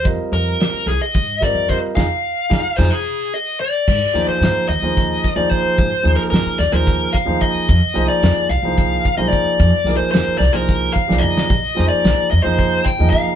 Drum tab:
CC |--------------|--------------|x-------------|--------------|
HH |x-x-x-x-x-x-x-|--------------|--x-x-x-x-x-x-|x-x-x-x-x-x-x-|
SD |----o-o---o-o-|o---o-o-------|----o---o-o---|----o-o-o-----|
T2 |--------------|--------------|--------------|--------------|
BD |o-------o-o-o-|o---o-o-------|o-------o-o-o-|o-------o-o-o-|

CC |--------------|--------------|--------------|
HH |x-x-x-x-x-x-x-|x-x-x-x-x-x---|x-x-x-x-x-x-x-|
SD |----o---------|--o-o-o----o-o|--o-o-------o-|
T2 |--------------|------------o-|--------------|
BD |o-------o-o-o-|o-------o-o---|o-------o-o-o-|